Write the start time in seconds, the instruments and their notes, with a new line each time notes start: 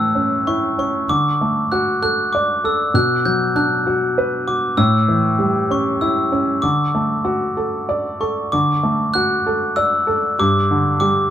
Already playing: felt piano A2 E3 A3, glockenspiel E6
0.15 felt piano C#4
0.47 felt piano E4, glockenspiel C#6
0.78 felt piano C#4, glockenspiel C#6
1.09 felt piano D3, glockenspiel D6
1.41 felt piano A3
1.72 felt piano F#4, glockenspiel F#6
2.02 felt piano A4, glockenspiel F#6
2.33 felt piano D5, glockenspiel D6
2.64 felt piano A4, glockenspiel E6
2.94 felt piano B2, glockenspiel F#6
3.25 felt piano F#3, glockenspiel G6
3.55 felt piano D4, glockenspiel F#6
3.87 felt piano F#4
4.18 felt piano B4
4.47 felt piano F#4, glockenspiel D6
4.77 felt piano A2, glockenspiel E6
5.08 felt piano E3
5.39 felt piano G3
5.70 felt piano C#4, glockenspiel C#6
6.01 felt piano E4, glockenspiel E6
6.32 felt piano C#4
6.62 felt piano D3, glockenspiel D6
6.95 felt piano A3
7.25 felt piano F#4
7.57 felt piano A4
7.89 felt piano D5
8.21 felt piano A4, glockenspiel C#6
8.52 felt piano D3, glockenspiel D6
8.83 felt piano A3
9.14 felt piano F#4, glockenspiel F#6
9.46 felt piano A4
9.76 felt piano D5, glockenspiel E6
10.07 felt piano A4
10.39 felt piano G2, glockenspiel D6
10.71 felt piano D3
11.00 felt piano G3, glockenspiel D6